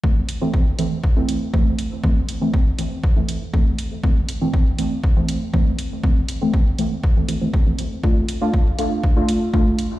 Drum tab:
HH |-x-x-x-x|-x-x-x-x|-x-x-x-x|-x-x-x-x|
BD |o-o-o-o-|o-o-o-o-|o-o-o-o-|o-o-o-o-|

HH |-x-x-x-x|
BD |o-o-o-o-|